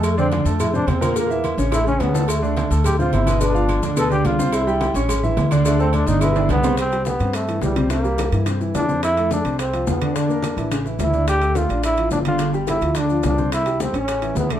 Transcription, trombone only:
\new Staff \with { instrumentName = "Trombone" } { \time 4/4 \key c \major \tempo 4 = 214 a8 c'8 r4 e'8 d'8 c'4 | bes4. r8 e'8 cis'8 b4 | a4. r8 g'8 f'8 e'4 | d'4. r8 a'8 g'8 f'4 |
e'4. r2 r8 | a8 c'8 d'8 ees'8 e'4 b4 | c'4 b4 a4 g4 | bes2 r4 d'4 |
e'4 d'4 c'4 b4 | d'2 r4 e'4 | g'4 f'4 e'4 d'8 f'8~ | f'8 r8 e'4 d'4 d'4 |
e'4 \tuplet 3/2 { c'4 des'8~ } des'4 b8 a8 | }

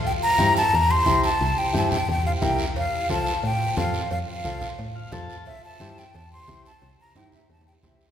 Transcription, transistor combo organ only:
\new Staff \with { instrumentName = "Transistor combo organ" } { \time 4/4 \key c \mixolydian \tempo 4 = 177 << { r1 | r1 | r1 | r2 r8 f''8 a''4 |
r1 | r1 | } \\ { r4 <e' g' c''>8 r4. <e' g' c''>8 r8 | r4 <e' g' c''>8 r4. <e' g' bes'>8 r8 | r4 <f' a' c''>8 r4. <f' a' c''>8 r8 | r4 <f' a' c''>8 r4. <f' a' c''>8 r8 |
r4 <e' g' c''>8 r4. <e' g' c''>8 r8 | r4 <e' g' c''>8 r4. <e' g' c''>8 r8 | } >> }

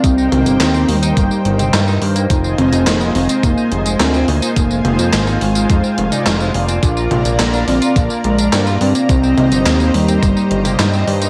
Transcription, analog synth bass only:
\new Staff \with { instrumentName = "Analog synth bass" } { \clef bass \time 4/4 \key f \dorian \tempo 4 = 106 c,8 c,16 g,,16 ees,8 ees,8 g,,16 r16 g,,8 g,8 g,8 | f,,8 f,,16 f,,16 f,,8 f,,16 r16 f,,16 r16 f,,8 d,8 d,16 r16 | f,,8 f,,16 f,16 aes,,8 aes,,8 f,16 r16 f,,16 r16 f,,8 f,,8 | bes,,8 bes,,16 bes,,16 bes,,8 bes,,16 r16 bes,,16 r16 bes,,8 g,8 g,16 r16 |
c,8 c,16 g,,16 ees,8 ees,8 g,,16 r16 g,,8 g,8 g,8 | }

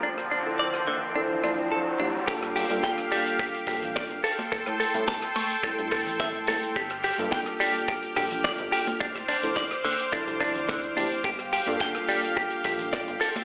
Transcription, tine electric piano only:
\new Staff \with { instrumentName = "Tine electric piano" } { \time 4/4 \key g \dorian \tempo 4 = 107 r8. <f c' d' e' a'>16 r4 <f c' d' e' a'>8 <f c' d' e' d''>4 <f c' d' e' g'>16 r16 | <g bes d' f' a'>8. <g bes d' f' a'>4.~ <g bes d' f' a'>16 <g bes d' f' a'>4 r8 | r8. <g a c' e' a'>16 r4 <g a c' e' a'>2 | r8. <g bes d' f' a'>4.~ <g bes d' f' a'>16 <g bes d' f' a'>4. |
r8. <f c' d' e' a'>16 r4 <f c' d' e' a'>8 <f c' d' e' d''>4 <f c' d' e' g'>16 r16 | r8. <g bes d' f' a'>4.~ <g bes d' f' a'>16 <g bes d' f' a'>4 r8 | }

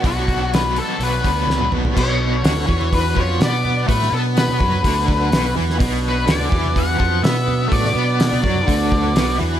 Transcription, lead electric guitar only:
\new Staff \with { instrumentName = "Lead electric guitar" } { \time 4/4 \key b \dorian \tempo 4 = 125 fis'4 b'8 a'8 b'4. r8 | cis''2 b'8 cis''8 d''4 | b'8 a'8 b'2~ b'8 r8 | r8 b'8 d''4 fis''4 e''4 |
d''2.~ d''8 r8 | }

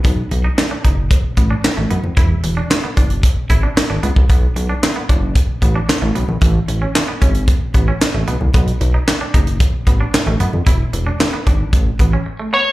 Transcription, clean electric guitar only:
\new Staff \with { instrumentName = "Clean electric guitar" } { \time 4/4 \key b \dorian \tempo 4 = 113 b16 r8 dis'16 r16 d'16 dis'16 r8. b16 d'16 r16 a16 b16 r16 | e'16 r8 d'16 r16 b16 d'16 r8. e'16 d'16 r16 d'16 b16 r16 | b16 r8 d'16 r16 b16 d'16 r8. b16 d'16 r16 a16 b16 r16 | a16 r8 cis'16 r16 b16 cis'16 r8. b16 cis'16 r16 a16 b16 r16 |
b16 r8 dis'16 r16 d'16 dis'16 r8. b16 d'16 r16 a16 b16 r16 | e'16 r8 d'16 r16 b16 d'16 r8. b16 cis'16 r16 a16 b16 r16 | }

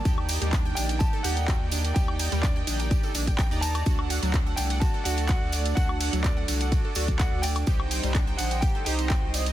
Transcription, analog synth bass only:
\new Staff \with { instrumentName = "Analog synth bass" } { \clef bass \time 4/4 \key ees \lydian \tempo 4 = 126 ees,8. ees,8. bes,,8. r16 ees,8. ees,8. | ees,8. ees,8. bes,,8. r16 bes,,8. ees,8. | d,8. d,8. c,8. r16 d,8. d,8. | d,8. d,8. c,8. r16 d,8. d,8. |
c,8. c,8. bes,,8. r16 c,8. c,8. | }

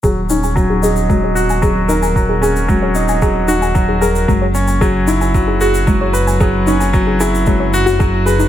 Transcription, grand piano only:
\new Staff \with { instrumentName = "Grand piano" } { \time 4/4 \key dis \phrygian \tempo 4 = 113 fis8 cis'8 fis8 dis'8 fis8 fis'8 fis8 ais'8 | fis8 cis'8 fis8 dis'8 fis8 fis'8 fis8 ais'8 | fis8 cis'8 fis8 e'8 fis8 fis'8 fis8 b'8 | fis8 cis'8 fis8 e'8 fis8 fis'8 fis8 b'8 | }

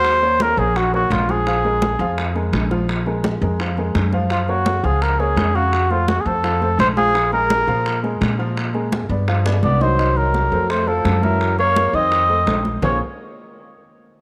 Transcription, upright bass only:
\new Staff \with { instrumentName = "Upright bass" } { \clef bass \time 4/4 \key bes \minor \tempo 4 = 169 ees,4. bes,,4. bes,,4~ | bes,,4. f,4. bes,,4~ | bes,,4. f,4. ges,4~ | ges,4. des,4. f,4~ |
f,4. f,4. bes,,4~ | bes,,4. bes,4. bes,4~ | bes,4. g,4. c,4~ | c,4. f,4. ges,4~ |
ges,4. f,4. bes,,4 | bes,,8 r2. r8 | }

